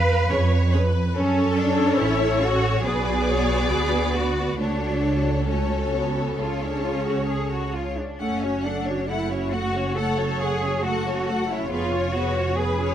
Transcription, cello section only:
0.00 0.73 B4 medium
1.15 1.55 C#4 medium
1.58 2.01 D4 medium
2.00 2.43 E4 medium
2.43 2.86 F#4 medium
2.86 4.13 G#4 medium
4.15 4.60 F#4 medium
4.60 5.47 D4 medium
5.50 6.39 C#4 medium
6.39 6.62 F4 medium
6.63 6.85 D4 soft
6.84 7.06 F4 medium
7.08 7.29 F#4 soft
7.29 7.51 G#4 medium
7.53 7.75 F#4 medium
7.74 7.97 F4 medium
7.98 8.21 D4 medium
8.20 8.65 C#4 medium
8.65 9.09 D4 medium
9.09 9.53 E4 medium
9.53 9.97 F#4 medium
9.97 10.40 A4 medium
10.40 10.84 G#4 medium
10.84 11.49 F#4 medium
11.49 11.71 E4 medium
11.70 12.13 F4 medium
12.13 12.57 F#4 medium
12.57 12.95 G#4 medium

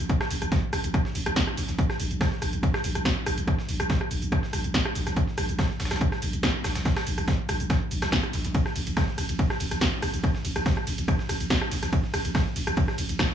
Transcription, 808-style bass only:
0.31 0.41 A1 loud
0.42 0.52 A1 medium
0.73 0.83 A1 loud
0.84 0.94 A1 medium
1.15 1.26 A1 loud
1.26 1.36 A1 medium
1.57 1.68 A1 loud
1.69 1.78 A1 medium
2.00 2.10 A#1 loud
2.11 2.21 A#1 medium
2.42 2.52 A#1 loud
2.53 2.63 A#1 medium
2.84 2.95 A#1 loud
2.95 3.05 A#1 medium
3.26 3.37 A#1 loud
3.38 3.47 A#1 medium
3.69 3.79 A#1 loud
3.80 3.90 A#1 medium
4.11 4.22 A#1 loud
4.22 4.32 A#1 medium
4.53 4.64 A#1 loud
4.64 4.74 A#1 medium
4.96 5.06 A#1 loud
5.07 5.16 A#1 medium
5.38 5.48 A#1 loud
5.49 5.59 A#1 medium
5.80 5.91 A#1 loud
5.91 6.01 A#1 medium
6.22 6.33 A#1 loud
6.33 6.43 A#1 medium
6.64 6.75 A#1 loud
6.76 6.85 A#1 medium
7.07 7.17 A#1 loud
7.18 7.28 A#1 medium
7.49 7.59 A#1 loud
7.60 7.70 A#1 medium
7.91 8.02 A#1 loud
8.02 8.12 A#1 medium
8.34 8.44 A#1 loud
8.45 8.54 A#1 medium
8.76 8.86 A1 loud
8.87 8.97 A1 medium
9.18 9.29 A1 loud
9.29 9.39 A1 medium
9.60 9.71 A1 loud
9.71 9.81 A1 medium
10.03 10.13 A1 loud
10.14 10.23 A1 medium
10.45 10.55 A1 loud
10.56 10.66 A1 medium
10.87 10.98 A1 loud
10.98 11.08 A1 medium
11.29 11.40 A1 loud
11.40 11.50 A1 medium
11.71 11.82 A1 loud
11.83 11.92 A1 medium
12.14 12.24 A1 loud
12.25 12.35 A1 medium
12.56 12.67 A1 loud
12.67 12.77 A1 medium
12.98 13.09 A1 loud
13.09 13.19 A1 medium

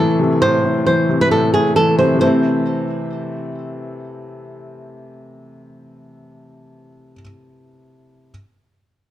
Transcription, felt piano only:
0.00 0.42 A2 loud
0.00 0.18 C3 medium
0.00 0.87 E3 medium
0.19 1.07 C3 medium
0.42 0.63 A2 medium
0.64 1.30 A2 medium
0.87 1.74 E3 medium
1.09 1.97 C3 medium
1.31 1.52 A2 medium
1.54 2.21 A2 medium
1.76 2.17 E3 medium
1.98 2.13 C3 medium
2.15 7.11 C3 medium
2.19 7.15 E3 medium
2.23 7.19 A3 medium
2.27 7.23 C4 medium

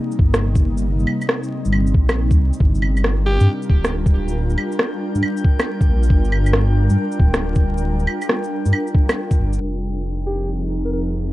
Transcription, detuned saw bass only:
0.19 1.06 G1 medium
1.66 1.96 G1 loud
1.94 2.32 A#1 loud
2.31 2.40 D#2 medium
2.39 2.52 C2 medium
2.61 3.39 G1 loud
3.41 3.47 G2 loud
3.70 4.56 D1 medium
5.16 5.22 G2 loud
5.89 6.09 A#1 medium
6.10 6.89 G1 loud
6.91 6.97 G2 loud
7.20 8.06 D1 medium
8.66 8.73 G2 loud
9.39 9.60 G1 loud
9.60 11.33 F1 medium

